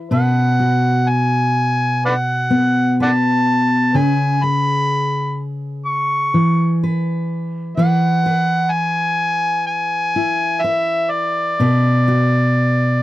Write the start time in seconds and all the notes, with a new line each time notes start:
Already playing: E3 B4
0.11 B2 B4 F#5
0.60 F#4
1.09 G#5
2.06 B4 D5 F#5
2.50 B3
3.00 B4 D5 F#5 A5
3.94 C#3 B4 G#5
4.43 G#4 B5
5.86 C#6
6.34 E3
6.83 B4
7.77 E3 B4 F#5
8.26 B4
8.71 G#5
9.67 G#5
10.16 E4
10.62 B4 E5
11.10 D5
11.60 B2 B4
12.08 F#4